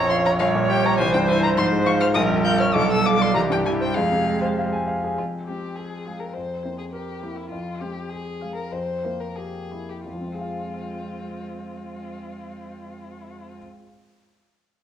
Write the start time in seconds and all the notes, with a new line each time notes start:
Already playing: A#1 F2 F3 C#5
0.09 F4 C6
0.25 C#5 A#5
0.39 A#1 G3 C#5 F5
0.55 A#2
0.69 G4 G5
0.84 C#5 A#5
0.98 C2 E3 C5 G#5
1.14 G2 G5
1.28 E4 G#5
1.43 C5 A#5
1.55 G#2 F3 C5 C6
1.72 G#3
1.86 F4 C#6
2.00 C5 F6
2.14 A#1 G3 A#4 D#6
2.30 F2
2.45 F4 G6
2.60 C#5 F6
2.73 B1 G3 A4 D6
2.91 B2 E6
3.06 F4 D6
3.20 D5 C6
3.34 C2 E3 G4 A#5
3.50 G2 G5
3.64 G3 E4 G#5
3.81 C5 G5
3.94 F2 G#3 G#4 F5
4.12 C3
4.27 F4
4.41 C5
4.59 F5
4.72 G#5
4.87 F5
5.04 G#4
5.18 F2 F4
5.46 G#3 C4 F4 G4
5.75 G#4
6.06 G#3 F4
6.20 A#4
6.33 F2 C5
6.63 A#3 C4 E4
6.78 G#4
6.92 G4 A#4
7.21 A#3 E4
7.36 E4
7.50 F2 F4
7.80 G#3 C4 F4 G4
8.09 G#4
8.41 G#3 F4
8.56 A#4
8.72 F2 C5
9.04 A#3 E4
9.20 A#4
9.36 G4 G#4
9.71 A#3 E4
9.89 G4
10.06 F2 G#3 C4 F4
10.13 F3
10.21 C4
10.28 F4
10.35 G#4
10.41 F5